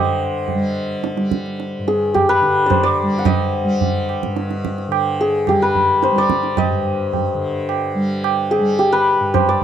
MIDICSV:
0, 0, Header, 1, 4, 480
1, 0, Start_track
1, 0, Tempo, 554017
1, 1374, Time_signature, 3, 2, 24, 8
1, 8351, End_track
2, 0, Start_track
2, 0, Title_t, "Santur"
2, 0, Program_c, 0, 15
2, 0, Note_on_c, 0, 72, 84
2, 0, Note_on_c, 0, 75, 84
2, 0, Note_on_c, 0, 78, 55
2, 1626, Note_on_c, 0, 68, 63
2, 1657, Note_off_c, 0, 72, 0
2, 1720, Note_off_c, 0, 78, 0
2, 1857, Note_on_c, 0, 67, 66
2, 1909, Note_off_c, 0, 68, 0
2, 1984, Note_on_c, 0, 71, 82
2, 1986, Note_off_c, 0, 75, 0
2, 2306, Note_on_c, 0, 74, 60
2, 2339, Note_on_c, 0, 72, 76
2, 2391, Note_off_c, 0, 71, 0
2, 2452, Note_off_c, 0, 74, 0
2, 2455, Note_on_c, 0, 74, 85
2, 2759, Note_on_c, 0, 78, 61
2, 2811, Note_off_c, 0, 67, 0
2, 2823, Note_on_c, 0, 75, 93
2, 2875, Note_off_c, 0, 74, 0
2, 4511, Note_on_c, 0, 68, 68
2, 4624, Note_off_c, 0, 78, 0
2, 4627, Note_off_c, 0, 72, 0
2, 4754, Note_on_c, 0, 67, 65
2, 4806, Note_off_c, 0, 68, 0
2, 4871, Note_on_c, 0, 71, 71
2, 4874, Note_off_c, 0, 75, 0
2, 5228, Note_on_c, 0, 72, 72
2, 5279, Note_off_c, 0, 71, 0
2, 5355, Note_on_c, 0, 74, 83
2, 5701, Note_on_c, 0, 75, 86
2, 5753, Note_off_c, 0, 74, 0
2, 7373, Note_on_c, 0, 68, 66
2, 7425, Note_off_c, 0, 67, 0
2, 7515, Note_off_c, 0, 72, 0
2, 7614, Note_on_c, 0, 67, 64
2, 7666, Note_off_c, 0, 68, 0
2, 7732, Note_on_c, 0, 71, 83
2, 7752, Note_off_c, 0, 75, 0
2, 8091, Note_on_c, 0, 72, 78
2, 8143, Note_off_c, 0, 71, 0
2, 8219, Note_on_c, 0, 74, 80
2, 8351, Note_off_c, 0, 67, 0
2, 8351, Note_off_c, 0, 72, 0
2, 8351, Note_off_c, 0, 74, 0
2, 8351, End_track
3, 0, Start_track
3, 0, Title_t, "Tanpura"
3, 0, Program_c, 1, 104
3, 0, Note_on_c, 1, 43, 58
3, 0, Note_on_c, 1, 50, 52
3, 0, Note_on_c, 1, 55, 51
3, 469, Note_off_c, 1, 55, 0
3, 469, Note_on_c, 1, 55, 50
3, 1004, Note_off_c, 1, 55, 0
3, 1004, Note_on_c, 1, 55, 50
3, 1547, Note_off_c, 1, 43, 0
3, 1550, Note_on_c, 1, 43, 54
3, 2087, Note_off_c, 1, 50, 0
3, 2090, Note_on_c, 1, 50, 53
3, 2619, Note_off_c, 1, 55, 0
3, 2619, Note_on_c, 1, 55, 50
3, 3153, Note_off_c, 1, 55, 0
3, 3153, Note_on_c, 1, 55, 57
3, 3689, Note_off_c, 1, 43, 0
3, 3692, Note_on_c, 1, 43, 59
3, 4224, Note_off_c, 1, 50, 0
3, 4227, Note_on_c, 1, 50, 48
3, 4758, Note_off_c, 1, 55, 0
3, 4758, Note_on_c, 1, 55, 46
3, 5292, Note_off_c, 1, 55, 0
3, 5292, Note_on_c, 1, 55, 49
3, 5805, Note_off_c, 1, 43, 0
3, 5808, Note_on_c, 1, 43, 52
3, 6358, Note_off_c, 1, 50, 0
3, 6361, Note_on_c, 1, 50, 49
3, 6885, Note_off_c, 1, 55, 0
3, 6885, Note_on_c, 1, 55, 51
3, 7440, Note_off_c, 1, 55, 0
3, 7440, Note_on_c, 1, 55, 62
3, 7971, Note_off_c, 1, 43, 0
3, 7974, Note_on_c, 1, 43, 52
3, 8351, Note_off_c, 1, 43, 0
3, 8351, Note_off_c, 1, 50, 0
3, 8351, Note_off_c, 1, 55, 0
3, 8351, End_track
4, 0, Start_track
4, 0, Title_t, "Tabla"
4, 414, Note_on_c, 9, 63, 57
4, 414, Note_on_c, 9, 64, 46
4, 501, Note_off_c, 9, 63, 0
4, 501, Note_off_c, 9, 64, 0
4, 899, Note_on_c, 9, 62, 73
4, 986, Note_off_c, 9, 62, 0
4, 1017, Note_on_c, 9, 62, 55
4, 1104, Note_off_c, 9, 62, 0
4, 1139, Note_on_c, 9, 37, 52
4, 1225, Note_off_c, 9, 37, 0
4, 1265, Note_on_c, 9, 62, 44
4, 1351, Note_off_c, 9, 62, 0
4, 1384, Note_on_c, 9, 62, 72
4, 1471, Note_off_c, 9, 62, 0
4, 1626, Note_on_c, 9, 62, 57
4, 1713, Note_off_c, 9, 62, 0
4, 1865, Note_on_c, 9, 60, 57
4, 1865, Note_on_c, 9, 64, 57
4, 1951, Note_off_c, 9, 60, 0
4, 1951, Note_off_c, 9, 64, 0
4, 2106, Note_on_c, 9, 62, 57
4, 2193, Note_off_c, 9, 62, 0
4, 2344, Note_on_c, 9, 63, 69
4, 2344, Note_on_c, 9, 64, 63
4, 2431, Note_off_c, 9, 63, 0
4, 2431, Note_off_c, 9, 64, 0
4, 2819, Note_on_c, 9, 60, 84
4, 2819, Note_on_c, 9, 64, 82
4, 2906, Note_off_c, 9, 60, 0
4, 2906, Note_off_c, 9, 64, 0
4, 3302, Note_on_c, 9, 63, 60
4, 3302, Note_on_c, 9, 64, 57
4, 3388, Note_off_c, 9, 63, 0
4, 3388, Note_off_c, 9, 64, 0
4, 3544, Note_on_c, 9, 60, 52
4, 3631, Note_off_c, 9, 60, 0
4, 3667, Note_on_c, 9, 37, 54
4, 3753, Note_off_c, 9, 37, 0
4, 3781, Note_on_c, 9, 62, 62
4, 3868, Note_off_c, 9, 62, 0
4, 3904, Note_on_c, 9, 62, 49
4, 3991, Note_off_c, 9, 62, 0
4, 4026, Note_on_c, 9, 37, 59
4, 4113, Note_off_c, 9, 37, 0
4, 4144, Note_on_c, 9, 62, 49
4, 4231, Note_off_c, 9, 62, 0
4, 4261, Note_on_c, 9, 60, 68
4, 4348, Note_off_c, 9, 60, 0
4, 4741, Note_on_c, 9, 60, 62
4, 4741, Note_on_c, 9, 64, 50
4, 4827, Note_off_c, 9, 60, 0
4, 4827, Note_off_c, 9, 64, 0
4, 4984, Note_on_c, 9, 64, 49
4, 5070, Note_off_c, 9, 64, 0
4, 5220, Note_on_c, 9, 62, 73
4, 5307, Note_off_c, 9, 62, 0
4, 5337, Note_on_c, 9, 62, 49
4, 5424, Note_off_c, 9, 62, 0
4, 5455, Note_on_c, 9, 37, 56
4, 5541, Note_off_c, 9, 37, 0
4, 5575, Note_on_c, 9, 62, 47
4, 5662, Note_off_c, 9, 62, 0
4, 5693, Note_on_c, 9, 60, 78
4, 5693, Note_on_c, 9, 64, 78
4, 5780, Note_off_c, 9, 60, 0
4, 5780, Note_off_c, 9, 64, 0
4, 6181, Note_on_c, 9, 63, 67
4, 6181, Note_on_c, 9, 64, 52
4, 6268, Note_off_c, 9, 63, 0
4, 6268, Note_off_c, 9, 64, 0
4, 6662, Note_on_c, 9, 60, 70
4, 6749, Note_off_c, 9, 60, 0
4, 7141, Note_on_c, 9, 60, 66
4, 7228, Note_off_c, 9, 60, 0
4, 7382, Note_on_c, 9, 60, 58
4, 7468, Note_off_c, 9, 60, 0
4, 7617, Note_on_c, 9, 63, 58
4, 7704, Note_off_c, 9, 63, 0
4, 8096, Note_on_c, 9, 60, 69
4, 8096, Note_on_c, 9, 64, 63
4, 8183, Note_off_c, 9, 60, 0
4, 8183, Note_off_c, 9, 64, 0
4, 8351, End_track
0, 0, End_of_file